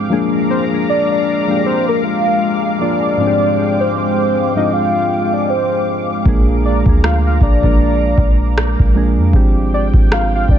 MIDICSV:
0, 0, Header, 1, 6, 480
1, 0, Start_track
1, 0, Tempo, 769231
1, 64, Time_signature, 4, 2, 24, 8
1, 6607, End_track
2, 0, Start_track
2, 0, Title_t, "Analog synth pad"
2, 0, Program_c, 0, 89
2, 0, Note_on_c, 0, 77, 74
2, 0, Note_on_c, 0, 86, 89
2, 62, Note_on_c, 0, 56, 83
2, 62, Note_on_c, 0, 82, 72
2, 1964, Note_off_c, 0, 82, 0
2, 1987, Note_on_c, 0, 79, 75
2, 3886, Note_off_c, 0, 79, 0
2, 3904, Note_on_c, 0, 82, 73
2, 5805, Note_off_c, 0, 82, 0
2, 5824, Note_on_c, 0, 79, 76
2, 6607, Note_off_c, 0, 56, 0
2, 6607, Note_off_c, 0, 77, 0
2, 6607, Note_off_c, 0, 79, 0
2, 6607, Note_off_c, 0, 86, 0
2, 6607, End_track
3, 0, Start_track
3, 0, Title_t, "Soft synth lead"
3, 0, Program_c, 1, 80
3, 313, Note_on_c, 1, 72, 87
3, 400, Note_off_c, 1, 72, 0
3, 558, Note_on_c, 1, 74, 96
3, 681, Note_off_c, 1, 74, 0
3, 695, Note_on_c, 1, 74, 104
3, 1007, Note_off_c, 1, 74, 0
3, 1035, Note_on_c, 1, 72, 99
3, 1160, Note_off_c, 1, 72, 0
3, 1177, Note_on_c, 1, 70, 91
3, 1264, Note_off_c, 1, 70, 0
3, 1275, Note_on_c, 1, 77, 116
3, 1725, Note_off_c, 1, 77, 0
3, 1755, Note_on_c, 1, 74, 112
3, 2373, Note_on_c, 1, 72, 90
3, 2382, Note_off_c, 1, 74, 0
3, 2469, Note_off_c, 1, 72, 0
3, 2476, Note_on_c, 1, 72, 97
3, 2824, Note_off_c, 1, 72, 0
3, 2851, Note_on_c, 1, 75, 89
3, 2941, Note_off_c, 1, 75, 0
3, 2953, Note_on_c, 1, 77, 99
3, 3329, Note_on_c, 1, 74, 84
3, 3338, Note_off_c, 1, 77, 0
3, 3430, Note_on_c, 1, 72, 89
3, 3440, Note_off_c, 1, 74, 0
3, 3806, Note_off_c, 1, 72, 0
3, 4151, Note_on_c, 1, 74, 87
3, 4239, Note_off_c, 1, 74, 0
3, 4394, Note_on_c, 1, 77, 109
3, 4519, Note_off_c, 1, 77, 0
3, 4534, Note_on_c, 1, 77, 97
3, 4623, Note_off_c, 1, 77, 0
3, 4633, Note_on_c, 1, 74, 103
3, 5564, Note_off_c, 1, 74, 0
3, 6077, Note_on_c, 1, 74, 92
3, 6164, Note_off_c, 1, 74, 0
3, 6321, Note_on_c, 1, 77, 107
3, 6442, Note_off_c, 1, 77, 0
3, 6460, Note_on_c, 1, 77, 99
3, 6546, Note_off_c, 1, 77, 0
3, 6557, Note_on_c, 1, 74, 97
3, 6607, Note_off_c, 1, 74, 0
3, 6607, End_track
4, 0, Start_track
4, 0, Title_t, "Synth keys"
4, 0, Program_c, 2, 88
4, 0, Control_c, 2, 64, 127
4, 0, Note_on_c, 2, 44, 69
4, 0, Note_on_c, 2, 53, 64
4, 0, Note_on_c, 2, 56, 60
4, 0, Note_on_c, 2, 60, 62
4, 0, Note_on_c, 2, 62, 61
4, 0, Note_on_c, 2, 79, 75
4, 59, Note_off_c, 2, 53, 0
4, 59, Note_on_c, 2, 53, 94
4, 65, Note_off_c, 2, 56, 0
4, 65, Note_on_c, 2, 56, 91
4, 71, Note_on_c, 2, 58, 90
4, 72, Control_c, 2, 64, 0
4, 73, Note_off_c, 2, 44, 0
4, 74, Note_off_c, 2, 60, 0
4, 75, Note_off_c, 2, 62, 0
4, 75, Note_on_c, 2, 62, 89
4, 78, Note_off_c, 2, 79, 0
4, 81, Note_on_c, 2, 68, 111
4, 175, Control_c, 2, 64, 127
4, 406, Note_off_c, 2, 53, 0
4, 409, Note_off_c, 2, 56, 0
4, 411, Note_off_c, 2, 58, 0
4, 413, Note_off_c, 2, 62, 0
4, 416, Note_off_c, 2, 68, 0
4, 442, Note_on_c, 2, 53, 63
4, 447, Note_on_c, 2, 56, 56
4, 454, Note_on_c, 2, 58, 57
4, 459, Note_on_c, 2, 62, 58
4, 463, Note_on_c, 2, 68, 69
4, 876, Note_off_c, 2, 53, 0
4, 878, Note_off_c, 2, 56, 0
4, 882, Note_off_c, 2, 58, 0
4, 884, Note_off_c, 2, 62, 0
4, 886, Note_off_c, 2, 68, 0
4, 920, Note_on_c, 2, 53, 64
4, 926, Note_on_c, 2, 56, 62
4, 930, Note_on_c, 2, 58, 59
4, 935, Note_on_c, 2, 62, 61
4, 942, Note_on_c, 2, 67, 75
4, 1683, Note_off_c, 2, 53, 0
4, 1686, Note_off_c, 2, 56, 0
4, 1688, Note_off_c, 2, 58, 0
4, 1691, Note_off_c, 2, 62, 0
4, 1694, Note_off_c, 2, 67, 0
4, 1740, Note_on_c, 2, 53, 67
4, 1746, Note_on_c, 2, 56, 58
4, 1750, Note_on_c, 2, 58, 59
4, 1756, Note_on_c, 2, 62, 57
4, 1761, Note_on_c, 2, 65, 71
4, 1965, Note_off_c, 2, 53, 0
4, 1968, Note_off_c, 2, 56, 0
4, 1970, Note_off_c, 2, 58, 0
4, 1973, Note_off_c, 2, 62, 0
4, 1976, Note_off_c, 2, 65, 0
4, 1980, Note_on_c, 2, 44, 83
4, 1985, Note_on_c, 2, 53, 77
4, 1989, Note_on_c, 2, 56, 70
4, 1992, Control_c, 2, 64, 0
4, 1992, Note_on_c, 2, 60, 75
4, 1996, Note_on_c, 2, 62, 76
4, 2000, Note_on_c, 2, 65, 76
4, 2039, Note_off_c, 2, 65, 0
4, 2041, Note_on_c, 2, 67, 90
4, 2102, Control_c, 2, 64, 127
4, 2759, Note_off_c, 2, 44, 0
4, 2761, Note_off_c, 2, 53, 0
4, 2763, Note_off_c, 2, 56, 0
4, 2765, Note_off_c, 2, 60, 0
4, 2767, Note_off_c, 2, 62, 0
4, 2790, Note_off_c, 2, 67, 0
4, 2838, Note_on_c, 2, 44, 68
4, 2842, Note_on_c, 2, 53, 64
4, 2847, Note_on_c, 2, 56, 62
4, 2850, Note_on_c, 2, 60, 61
4, 2854, Note_on_c, 2, 62, 60
4, 2859, Note_on_c, 2, 65, 74
4, 3707, Note_off_c, 2, 44, 0
4, 3709, Note_off_c, 2, 53, 0
4, 3711, Note_off_c, 2, 56, 0
4, 3713, Note_off_c, 2, 60, 0
4, 3715, Note_off_c, 2, 62, 0
4, 3717, Note_off_c, 2, 65, 0
4, 3899, Note_on_c, 2, 53, 94
4, 3905, Note_on_c, 2, 56, 90
4, 3910, Note_on_c, 2, 58, 90
4, 3913, Control_c, 2, 64, 0
4, 3915, Note_on_c, 2, 62, 87
4, 3921, Note_on_c, 2, 68, 102
4, 4013, Control_c, 2, 64, 127
4, 4245, Note_off_c, 2, 53, 0
4, 4248, Note_off_c, 2, 56, 0
4, 4251, Note_off_c, 2, 58, 0
4, 4254, Note_off_c, 2, 62, 0
4, 4256, Note_off_c, 2, 68, 0
4, 4278, Note_on_c, 2, 53, 63
4, 4283, Note_on_c, 2, 56, 53
4, 4288, Note_on_c, 2, 58, 57
4, 4294, Note_on_c, 2, 62, 59
4, 4299, Note_on_c, 2, 68, 72
4, 4714, Note_off_c, 2, 53, 0
4, 4716, Note_off_c, 2, 56, 0
4, 4719, Note_off_c, 2, 58, 0
4, 4721, Note_off_c, 2, 62, 0
4, 4724, Note_off_c, 2, 68, 0
4, 4755, Note_on_c, 2, 53, 68
4, 4761, Note_on_c, 2, 56, 65
4, 4767, Note_on_c, 2, 58, 64
4, 4772, Note_on_c, 2, 62, 62
4, 4777, Note_on_c, 2, 70, 74
4, 5521, Note_off_c, 2, 53, 0
4, 5523, Note_off_c, 2, 56, 0
4, 5526, Note_off_c, 2, 58, 0
4, 5529, Note_off_c, 2, 62, 0
4, 5531, Note_off_c, 2, 70, 0
4, 5579, Note_on_c, 2, 53, 78
4, 5583, Note_on_c, 2, 56, 69
4, 5589, Note_on_c, 2, 58, 67
4, 5594, Note_on_c, 2, 62, 71
4, 5599, Note_on_c, 2, 68, 83
4, 5804, Note_off_c, 2, 53, 0
4, 5807, Note_off_c, 2, 56, 0
4, 5810, Note_off_c, 2, 58, 0
4, 5812, Note_off_c, 2, 62, 0
4, 5814, Note_off_c, 2, 68, 0
4, 5820, Note_on_c, 2, 53, 96
4, 5825, Note_on_c, 2, 56, 91
4, 5831, Note_on_c, 2, 60, 91
4, 5832, Control_c, 2, 64, 0
4, 5836, Note_on_c, 2, 62, 90
4, 5840, Note_on_c, 2, 67, 112
4, 5936, Control_c, 2, 64, 127
4, 6599, Note_off_c, 2, 53, 0
4, 6602, Note_off_c, 2, 56, 0
4, 6605, Note_off_c, 2, 60, 0
4, 6607, Note_off_c, 2, 62, 0
4, 6607, Note_off_c, 2, 67, 0
4, 6607, End_track
5, 0, Start_track
5, 0, Title_t, "808-style bass"
5, 0, Program_c, 3, 38
5, 3904, Note_on_c, 3, 34, 102
5, 4268, Note_off_c, 3, 34, 0
5, 4281, Note_on_c, 3, 38, 102
5, 4609, Note_off_c, 3, 38, 0
5, 4624, Note_on_c, 3, 34, 102
5, 5085, Note_off_c, 3, 34, 0
5, 5102, Note_on_c, 3, 34, 102
5, 5467, Note_off_c, 3, 34, 0
5, 5488, Note_on_c, 3, 34, 106
5, 5724, Note_on_c, 3, 41, 99
5, 5734, Note_off_c, 3, 34, 0
5, 5819, Note_off_c, 3, 41, 0
5, 5825, Note_on_c, 3, 32, 105
5, 6188, Note_off_c, 3, 32, 0
5, 6200, Note_on_c, 3, 32, 94
5, 6529, Note_off_c, 3, 32, 0
5, 6543, Note_on_c, 3, 36, 97
5, 6607, Note_off_c, 3, 36, 0
5, 6607, End_track
6, 0, Start_track
6, 0, Title_t, "Drums"
6, 3904, Note_on_c, 9, 36, 113
6, 3966, Note_off_c, 9, 36, 0
6, 4280, Note_on_c, 9, 36, 91
6, 4342, Note_off_c, 9, 36, 0
6, 4393, Note_on_c, 9, 37, 117
6, 4455, Note_off_c, 9, 37, 0
6, 4623, Note_on_c, 9, 36, 77
6, 4685, Note_off_c, 9, 36, 0
6, 4763, Note_on_c, 9, 36, 94
6, 4826, Note_off_c, 9, 36, 0
6, 5102, Note_on_c, 9, 36, 89
6, 5164, Note_off_c, 9, 36, 0
6, 5352, Note_on_c, 9, 37, 100
6, 5414, Note_off_c, 9, 37, 0
6, 5488, Note_on_c, 9, 36, 82
6, 5550, Note_off_c, 9, 36, 0
6, 5825, Note_on_c, 9, 36, 107
6, 5887, Note_off_c, 9, 36, 0
6, 6200, Note_on_c, 9, 36, 89
6, 6263, Note_off_c, 9, 36, 0
6, 6314, Note_on_c, 9, 37, 112
6, 6376, Note_off_c, 9, 37, 0
6, 6543, Note_on_c, 9, 36, 83
6, 6605, Note_off_c, 9, 36, 0
6, 6607, End_track
0, 0, End_of_file